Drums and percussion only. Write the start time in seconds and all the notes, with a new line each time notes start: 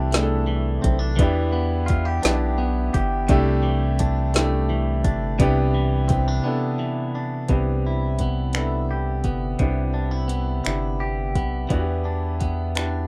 0.12 snare, closed hi-hat
0.84 kick, closed hi-hat
1.19 kick, closed hi-hat
1.88 kick, closed hi-hat
2.23 snare, closed hi-hat
2.94 kick, closed hi-hat
3.29 kick, closed hi-hat
3.99 kick, closed hi-hat
4.34 snare, closed hi-hat
5.04 kick, closed hi-hat
5.40 kick, closed hi-hat
6.09 kick, closed hi-hat
7.48 kick, closed hi-hat
8.19 kick, closed hi-hat
8.53 finger snap, closed hi-hat
9.24 kick, closed hi-hat
9.59 kick, closed hi-hat
10.29 closed hi-hat
10.65 finger snap, closed hi-hat
11.35 kick, closed hi-hat
11.70 kick, closed hi-hat
12.41 kick, closed hi-hat
12.75 finger snap, closed hi-hat